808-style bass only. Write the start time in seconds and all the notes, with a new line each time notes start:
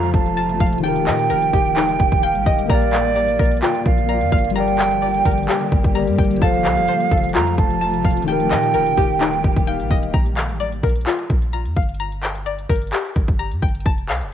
Already playing: F2
0.14 F1
0.49 G1
0.60 D#1
1.07 A#2
1.30 D#1
1.53 D#1
2.00 D#1
2.12 D#1
2.35 A#1
2.46 D#1
2.70 A#1
3.05 A1
3.39 A#1
3.86 A#1
4.21 F2
4.32 G1
5.25 G1
5.72 G1
5.84 G1
6.08 G2
6.18 G1
6.42 F1
6.65 C2
6.77 F1
7.11 F1
7.35 F2
7.58 F1
7.93 G1
8.04 D#1
8.51 A#2
8.74 D#1
8.97 D#1
9.44 D#1
9.56 D#1
9.79 A#1
9.90 D#1
10.14 A#1
10.49 A1
10.84 A#1
11.30 A#1
11.66 F2
11.77 G1
12.70 G1
13.16 G1
13.28 G1
13.52 G2
13.63 G1
13.86 F1
14.09 C2
14.21 F1